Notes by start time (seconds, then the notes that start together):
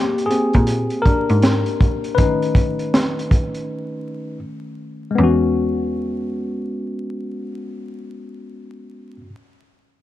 Already playing: A#3 G4
0.18 closed hi-hat
0.26 A#3 G4 G#4
0.30 C4, closed hi-hat
0.53 A#2, kick, closed hi-hat
0.67 closed hi-hat
0.90 closed hi-hat
1.02 A#4, kick, closed hi-hat
1.06 D4
1.29 G#2, closed hi-hat
1.42 snare, closed hi-hat
1.66 closed hi-hat
1.81 kick, closed hi-hat
2.04 closed hi-hat
2.15 D#3 A3 C#4 D#4 B4, kick, closed hi-hat
2.42 closed hi-hat
2.55 kick, closed hi-hat
2.79 closed hi-hat
2.94 snare, closed hi-hat
3.19 closed hi-hat
3.31 kick, closed hi-hat
3.55 closed hi-hat
5.11 G#3
5.15 E2 B3
5.20 C#4 F#4